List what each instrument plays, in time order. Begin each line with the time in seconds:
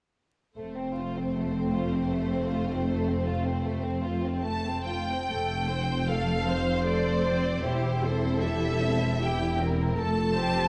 0.57 double bass section F1, cello section F2, violin section A3 C5, viola section A3
0.77 violin section C4
0.96 violin section F4
1.16 violin section C4
1.35 violin section A3
1.54 violin section C4
1.74 violin section F4
1.93 violin section C4
2.11 violin section A3
2.31 violin section C4
2.50 violin section F4
2.69 violin section C4
2.88 violin section A3
3.07 violin section C4
3.26 violin section F4
3.44 violin section C4
3.64 violin section A3
3.83 violin section C4
4.03 violin section F4
4.23 violin section C4
4.42 violin section A3 A5
4.66 violin section C4
4.87 violin section F4 G5
5.11 violin section C4
5.28 double bass section F1, cello section F2, viola section A3 A4
5.69 viola section C4 C5
6.09 viola section A3 A4, violin section A4 F5
6.48 viola section C4 C5, violin section C5
6.86 viola section A3 A4, violin section D5
7.25 viola section C4 C5
7.64 double bass section E1, cello section E2, viola section E4 G4, violin section G4 C5
8.04 viola section C4 E4, violin section A4
8.42 viola section E4 G4, violin section E5
8.82 viola section C4 E4
9.21 viola section E4 G4, violin section G4 G5
9.60 viola section C4 E4, violin section A#4
9.98 double bass section F1, cello section F2, viola section A3 A4, violin section A4 A5
10.36 viola section C4 C5, violin section G4